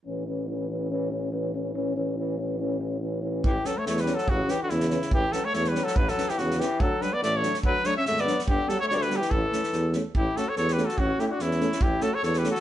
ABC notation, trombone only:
X:1
M:2/4
L:1/8
Q:"Swing 16ths" 1/4=143
K:Amix
V:1 name="Trombone" clef=bass
E, E, E, E, | E, E, E, E, | E, E, E, E, | E, E, E, E, |
z E, z E, | z E, z E, | z E, z E, | z E, z E, |
z F, z F, | z F, z F, | z G, z G, | z A, z A, |
z A, z A, | z A, z A, | z A, z A, |]